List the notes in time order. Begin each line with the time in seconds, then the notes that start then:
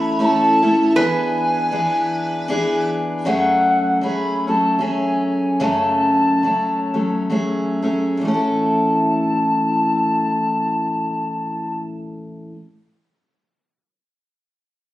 Already playing: E3 A3 C#4 E4 A4 C#5 B5
0.19 A3 C#4 E4 A4 B5
0.25 A5
0.62 A3 C#4 E4 A4
0.90 A5
0.95 E3 B3 D4 G#4 B4 G#5
1.71 E3 B3 D4 G#4
2.48 E3 B3 D4 G#4
3.25 F#2 C#3 F#3 A3 C#4 G#4 F#5
4.01 F#3 A3 C#4 G#4 B5
4.47 F#3 A3 C#4 A5
4.79 F#3 A3 C#4 G#4 G#5
5.26 G#5
5.60 F#2 C#3 F#3 A3 C#4 A5
6.43 F#3 A3 C#4
6.94 F#3 A3 C#4
7.30 F#3 A3 C#4 G#4
7.82 F#3 A3 C#4 G#4
8.17 A2 E3
8.23 A3 A5
8.28 C#4 E4
8.34 A4